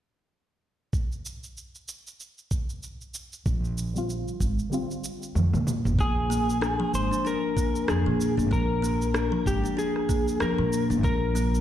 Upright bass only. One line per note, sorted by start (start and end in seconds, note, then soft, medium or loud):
3.46 4.23 A#1 medium
4.40 4.56 G#1 medium
5.35 5.51 F2 medium
5.53 5.87 A#2 medium
5.85 5.97 G#1 medium
6.94 7.09 G#1 medium
7.89 8.04 F2 medium
8.06 8.39 A#2 medium
8.38 8.49 G#1 loud
8.51 9.28 A#1 medium
9.46 9.62 G#1 medium
10.41 10.56 F2 medium
10.59 10.92 A#2 medium
10.90 11.02 G#1 loud
11.04 11.61 A#1 loud